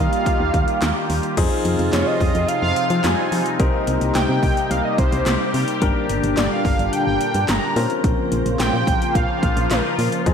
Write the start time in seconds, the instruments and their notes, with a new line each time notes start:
Already playing: analog synth pad D#3 G3 A#3 F4 G4, grand piano A#3 D#4 F4 G4
0.00 analog synth lead F5
0.13 closed hi-hat
0.26 kick, closed hi-hat
0.40 fm bass D#2
0.54 fm bass D#2, kick, closed hi-hat
0.68 closed hi-hat
0.82 fm bass D#2, snare, clap, closed hi-hat
1.10 fm bass D#2, open hi-hat
1.23 closed hi-hat
1.37 fm bass F2, analog synth pad C3 F3 C4 D#4 F4, grand piano C4 D#4 F4 G#4, kick, closed hi-hat, crash
1.65 fm bass F2, closed hi-hat
1.79 fm bass F2, closed hi-hat
1.93 fm bass F2, analog synth lead C#5, snare, clap, closed hi-hat
2.07 analog synth lead D#5
2.20 fm bass F2, kick, open hi-hat
2.35 fm bass F2, closed hi-hat
2.48 analog synth lead F5, closed hi-hat
2.62 fm bass F2, analog synth lead F5
2.76 closed hi-hat
2.90 fm bass F3, closed hi-hat
3.04 fm bass F2, grand piano G3 C4 D#4 F4, analog synth lead G#5, snare, clap, closed hi-hat
3.32 fm bass F3, open hi-hat
3.46 closed hi-hat
3.60 fm bass C2, analog synth pad C3 G3 A#3 G4, grand piano C4 D#4 G4 A#4, kick, closed hi-hat
3.87 fm bass C2, closed hi-hat
4.01 fm bass C2, closed hi-hat
4.15 fm bass C2, analog synth lead G5, snare, clap, closed hi-hat
4.29 fm bass C3
4.43 fm bass C2, kick, open hi-hat
4.57 closed hi-hat
4.71 fm bass C2, analog synth lead F5, closed hi-hat
4.85 analog synth lead D#5
4.98 fm bass C2, analog synth lead C5, kick, closed hi-hat
5.12 fm bass C2, closed hi-hat
5.26 fm bass C2, snare, clap, closed hi-hat
5.54 fm bass C3, open hi-hat
5.68 closed hi-hat
5.82 fm bass G1, analog synth pad A#2 D3 D4, grand piano A#3 D4 G4 A#4, kick, closed hi-hat
6.09 fm bass G1, closed hi-hat
6.23 fm bass G1, closed hi-hat
6.37 fm bass G1, analog synth lead D5, snare, clap, closed hi-hat
6.51 analog synth lead F5
6.65 fm bass G1, kick, open hi-hat
6.79 fm bass G1, closed hi-hat
6.93 analog synth lead G5, closed hi-hat
7.06 fm bass G1, analog synth lead G5
7.21 closed hi-hat
7.34 fm bass G2, closed hi-hat
7.48 fm bass G1, analog synth lead A#5, snare, clap, closed hi-hat
7.76 fm bass A#2, analog synth pad C#3 F3 A#3 F4 C5, grand piano C4 C#4 F4 A#4, open hi-hat
7.90 closed hi-hat
8.04 fm bass A#1, kick, closed hi-hat
8.32 fm bass A#1, closed hi-hat
8.46 fm bass A#1, closed hi-hat
8.60 fm bass A#1, analog synth lead G5, snare, clap, closed hi-hat
8.73 fm bass A#2
8.87 fm bass A#1, kick, closed hi-hat
9.02 closed hi-hat
9.15 fm bass A#1, analog synth lead F5, kick, closed hi-hat
9.43 fm bass A#1, kick, closed hi-hat
9.57 fm bass A#1, closed hi-hat
9.71 fm bass A#1, analog synth lead A#4, snare, clap, closed hi-hat
9.98 fm bass A#2, open hi-hat
10.12 closed hi-hat
10.26 fm bass F2, analog synth pad C3 G#3 D#4, grand piano C4 D#4 F4 G#4, kick, closed hi-hat